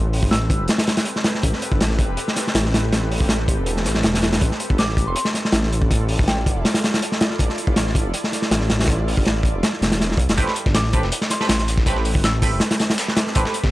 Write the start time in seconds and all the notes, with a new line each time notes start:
Already playing: A1 C4 G4 A4 B4
0.13 open hi-hat
0.23 G1, kick
0.31 A1 E6, snare, closed hi-hat
0.50 kick, closed hi-hat
0.60 E1
0.68 snare, closed hi-hat
0.78 snare, closed hi-hat
0.87 snare, closed hi-hat
0.97 snare, closed hi-hat
1.05 closed hi-hat
1.16 snare
1.24 snare, closed hi-hat
1.35 snare
1.43 A1, kick, closed hi-hat
1.53 snare
1.62 closed hi-hat
1.72 G1, kick
1.80 A1, snare, closed hi-hat
1.91 snare
1.99 kick, closed hi-hat
2.09 E1
2.17 closed hi-hat
2.28 snare
2.36 snare, closed hi-hat
2.47 snare
2.55 A1, snare, closed hi-hat
2.65 snare
2.74 snare, closed hi-hat
2.93 snare, closed hi-hat
3.11 open hi-hat
3.20 G1, kick
3.29 A1, snare, closed hi-hat
3.48 kick, closed hi-hat
3.58 E1
3.66 closed hi-hat
3.77 snare
3.85 A1, snare, closed hi-hat
3.95 snare
4.03 E1, snare, closed hi-hat
4.14 snare, closed hi-hat
4.22 snare, closed hi-hat
4.33 snare, closed hi-hat
4.41 A1 E4 F4 D5, kick, closed hi-hat
4.51 snare
4.60 closed hi-hat
4.70 G1, kick
4.78 A1 D6, snare, closed hi-hat
4.89 snare
4.97 kick, closed hi-hat
5.07 E1 C6
5.16 C6, closed hi-hat
5.25 snare
5.34 snare, closed hi-hat
5.45 snare
5.52 A1, snare, closed hi-hat
5.63 snare
5.73 closed hi-hat
5.82 kick
5.91 kick, closed hi-hat
6.09 open hi-hat
6.19 G1, kick
6.27 A1 G5, snare, closed hi-hat
6.46 kick, closed hi-hat
6.56 E1
6.65 snare, closed hi-hat
6.74 snare, closed hi-hat
6.84 snare, closed hi-hat
6.94 snare, closed hi-hat
7.02 closed hi-hat
7.12 snare
7.21 snare, closed hi-hat
7.30 snare
7.39 A1, kick, closed hi-hat
7.49 snare
7.58 closed hi-hat
7.67 G1, kick
7.76 A1, snare, closed hi-hat
7.87 snare
7.95 kick, closed hi-hat
8.05 E1
8.14 closed hi-hat
8.24 snare
8.33 snare, closed hi-hat
8.42 snare
8.51 A1, snare, closed hi-hat
8.61 snare
8.70 snare, closed hi-hat
8.79 snare, closed hi-hat
8.83 snare, closed hi-hat
8.88 kick, closed hi-hat
9.08 open hi-hat
9.17 G1, kick
9.25 A1, snare, closed hi-hat
9.43 kick, closed hi-hat
9.54 E1
9.63 snare, closed hi-hat
9.73 snare
9.81 E1, snare, closed hi-hat
9.92 snare, closed hi-hat
10.00 snare, closed hi-hat
10.11 snare
10.17 C2, kick, closed hi-hat
10.29 E1, snare, closed hi-hat
10.37 A1 A3 C4 G4 A4 B4, kick, closed hi-hat, tambourine
10.48 snare
10.56 closed hi-hat, tambourine
10.66 G1, kick, snare
10.75 A1 D6, snare, closed hi-hat, tambourine
10.85 snare
10.93 A3 C4 G4 B4, kick, closed hi-hat, tambourine
11.03 E1, snare
11.12 closed hi-hat, tambourine
11.22 snare
11.30 C6, snare, closed hi-hat, tambourine
11.41 A3 C4 G4 B4, snare
11.49 A1, snare, closed hi-hat, tambourine
11.59 snare, closed hi-hat
11.68 snare, closed hi-hat, tambourine
11.78 kick, snare
11.86 A3 C4 G4 B4, kick, closed hi-hat, tambourine
11.96 snare
12.05 open hi-hat, tambourine
12.15 G1, kick
12.24 A1 E6, snare, closed hi-hat, tambourine
12.42 A3 C4 G4 B4, kick, closed hi-hat, open hi-hat
12.53 E1
12.60 snare, closed hi-hat, tambourine
12.71 snare, closed hi-hat
12.80 snare, closed hi-hat, tambourine
12.90 snare, closed hi-hat
12.98 snare, closed hi-hat, tambourine
13.08 snare
13.17 snare, closed hi-hat, tambourine
13.27 snare
13.35 A1 A3 C4 G4 B4, kick, closed hi-hat, tambourine
13.45 snare
13.54 closed hi-hat, tambourine
13.64 G1, kick, snare